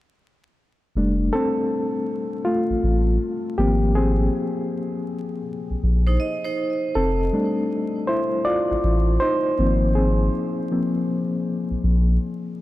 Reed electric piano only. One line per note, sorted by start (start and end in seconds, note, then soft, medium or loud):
0.97 3.54 G3 medium
0.97 2.45 A3 soft
0.97 3.55 D4 medium
1.33 2.42 C4 medium
1.33 2.41 A4 loud
2.45 3.54 A3 medium
2.45 3.61 F4 medium
3.58 4.67 F3 medium
3.58 3.94 A#3 medium
3.58 3.96 C4 medium
3.58 3.96 G4 medium
3.95 5.42 C4 medium
3.95 5.41 G#4 medium
6.95 8.04 C4 medium
6.95 8.11 A4 medium
7.33 9.54 G3 medium
7.33 9.54 A3 soft
7.33 9.54 D4 medium
8.07 8.43 E4 medium
8.07 8.46 C5 medium
8.45 9.17 F4 medium
8.45 9.22 D5 loud
9.20 9.92 D#4 medium
9.20 9.91 C5 loud
9.59 10.12 F3 medium
9.59 10.13 A#3 soft
9.59 9.96 C4 medium
9.95 10.71 C4 medium
9.95 12.54 G#4 medium
10.71 11.05 F3 soft
10.71 11.05 A#3 soft
10.71 11.05 C4 soft